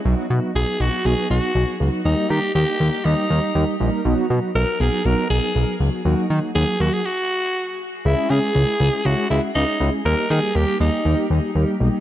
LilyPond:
<<
  \new Staff \with { instrumentName = "Alto saxophone" } { \time 4/4 \key dis \phrygian \tempo 4 = 120 r4 gis'8 fis'8 gis'8 fis'4 r8 | dis'8 g'8 g'4 dis'4. r8 | r4 ais'8 gis'8 ais'8 gis'4 r8 | r4 gis'8 fis'16 gis'16 fis'4. r8 |
e'8 gis'4. fis'8 e'8 dis'8. r16 | ais'8 gis'8 g'8 dis'4 r4. | }
  \new Staff \with { instrumentName = "Analog polysynth" } { \time 4/4 \key dis \phrygian <fis b dis' fis'>8 <fis b fis'>8 <fis fis'>8 <fis b dis' fis'>8 <fis b dis' fis'>8 <fis b dis' fis'>8 <fis b dis' fis'>8 <fis b dis' fis'>8 | <g ais dis' g'>8 <g ais g'>8 <g ais g'>8 <g ais dis' ais'>8 <g ais dis' g'>8 <g ais dis'>8 <g ais dis' g'>8 <g ais dis' ais'>8 | <fis b dis' fis'>8 <fis b dis' fis'>8 dis'8 <fis b dis' fis'>8 <fis b dis' fis'>8 <fis b dis' gis'>8 <fis b dis' gis'>8 <fis b dis' fis'>8 | <fis ais dis' fis'>8 <fis ais dis' fis'>8 <fis ais dis' fis'>8 <fis ais dis' fis'>8 r2 |
<gis cis' e' gis'>8 <gis cis' e' gis'>8 <gis cis' e' gis'>8 <gis cis' e' gis'>8 <gis cis' e' gis'>8 <gis cis' e' fis'>8 <gis cis' e' gis'>8 <gis cis' e' gis'>8 | <g ais g'>8 <g ais dis' g'>8 <g ais dis' g'>8 <g ais dis' g'>8 <g ais dis' g'>8 <g ais g'>8 <g ais dis' g'>8 <g ais dis' g'>8 | }
  \new Staff \with { instrumentName = "Analog synth bass" } { \clef bass \time 4/4 \key dis \phrygian b,,16 r16 b,16 r16 b,,16 r16 b,,16 r16 b,,16 r16 b,,16 r16 b,,16 r16 cis,16 r16 | dis,16 r16 dis16 r16 dis,16 r16 dis,16 r16 dis,16 r16 dis,16 r16 dis,16 r16 ais,,16 r16 | b,,16 r16 b,16 r16 b,,16 r16 b,,16 r16 b,,16 r16 b,,16 r16 b,,16 r16 cis,16 r16 | dis,16 r16 dis16 r16 dis,16 r16 dis,16 r2 r16 |
cis,16 r16 cis16 r16 cis,16 r16 cis,16 r16 cis,16 r16 cis,16 r16 cis,16 r16 cis,16 r16 | dis,16 r16 dis16 r16 dis,16 r16 dis,16 r16 dis,16 r16 dis,16 r16 dis,16 r16 b,,16 r16 | }
>>